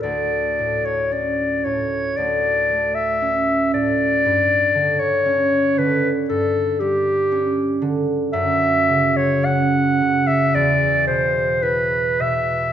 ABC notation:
X:1
M:4/4
L:1/16
Q:1/4=57
K:D
V:1 name="Clarinet"
d3 c d2 c2 d3 e3 d2- | d3 c3 B z A2 G4 z2 | e3 c f3 e d2 =c2 B2 e2 |]
V:2 name="Harp" clef=bass
[D,,A,D]2 A,,2 C2 A,,2 D,,2 A,2 C2 A,,2 | G,,2 D,2 C2 D,2 G,,2 G,2 C2 D,2 | F,,2 C,2 C2 C,2 E,,2 B,,2 E2 B,,2 |]